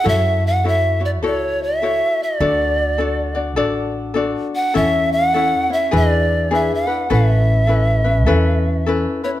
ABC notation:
X:1
M:4/4
L:1/16
Q:"Swing" 1/4=102
K:A
V:1 name="Pan flute"
e2 f2 e2 d2 c2 e4 d2- | d6 z8 f2 | e2 f4 e2 d4 e f3 | e12 z2 c2 |]
V:2 name="Ukulele"
[EFAc]4 [EFAc]2 [EFc]2 [EFAc]4 [EFAc]4 | [DFAd]4 [DFAd]2 [DFd]2 [DFAd]4 [DFAd]4 | [CEAc]4 [CEAc]2 [CEc]2 [DEGB]4 [DEGB]2 [DEB]2 | [CEAB]4 [CEAB]2 [CEB]2 [CEAB]4 [CEAB]2 [CEB]2 |]
V:3 name="Upright bass" clef=bass
F,,8 C,,8 | D,,8 A,,,8 | E,,8 E,,8 | A,,,8 E,,8 |]